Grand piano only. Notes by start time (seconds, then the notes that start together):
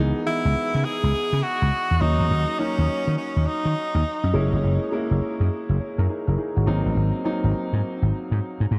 Already playing: E3 G#3 B3 D#4 G#4
0.26 E3 G#3 B3 D#5
2.00 F#3 A#3 C#4 D#4
2.59 F#3 A#3 C#4 D#4
4.33 G#3 A#3 C#4 E4
4.92 G#3 A#3 C#4 E4
5.80 G#4 C#5
5.98 E4 A#4
6.09 D#4 G#4
6.27 E4 A#4
6.38 D#4 G#4
6.56 C#4 F#4
6.66 F#3 A#3 C4 D#4
7.24 F#3 A#3 C4 D#4